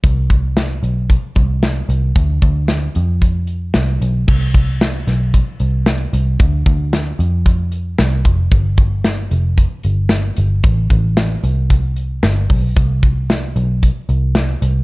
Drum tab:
CC |--------|--------|x-------|--------|
HH |xxxxxxxx|xxxxxxxx|-xxxxxxx|xxxxxxxx|
SD |--o---o-|--o---o-|--oo--o-|--o---o-|
BD |oo--oo--|oo--o---|oo--o---|oo--o--o|

CC |--------|--------|--------|
HH |xxxxxxxx|xxxxxxxo|xxxxxxxx|
SD |--o---o-|--o---o-|--o---o-|
BD |oo--o---|oo--o--o|oo--o---|